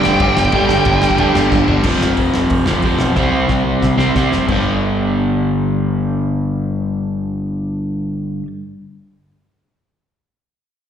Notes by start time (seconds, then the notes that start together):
Already playing: G2 D3 G3 G5
0.04 F1 G2 D3 G3, snare
0.20 G1 G2 D3 G3, kick, ride
0.36 G1 G2 D3 G3, snare
0.45 kick
0.52 G1 G2 D3 G3, kick, ride
0.68 G1 G2 D3 G3, snare
0.85 G1 G2 D3 G3, kick, ride
1.02 G2 D3 G3, snare
1.11 kick
1.17 F1 G2 D3 G3, kick, ride
1.35 G1 G2 D3 G3, snare
1.51 G1 G2 D3 G3, kick, snare
1.68 G1 G2 D3 G3, floor tom
1.83 F1 F2 C3 F3, kick, crash
2.01 F1, snare
2.17 F1, kick, open hi-hat
2.34 F1, snare
2.50 F1, kick, open hi-hat
2.66 F1 F2 C3 F3, snare
2.82 F1 F2 C3 F3, kick, open hi-hat
2.99 B1, snare
3.15 C2 C3 G3, kick, snare
3.20 C4
3.32 C2
3.48 C2, kick, snare
3.65 C2
3.82 C2, kick, snare
3.97 C2 C3 G3 C4, snare
4.15 C2 C3 G3 C4, kick, snare
4.32 F1, snare
4.47 G1 G2 D3, kick, crash
4.51 G3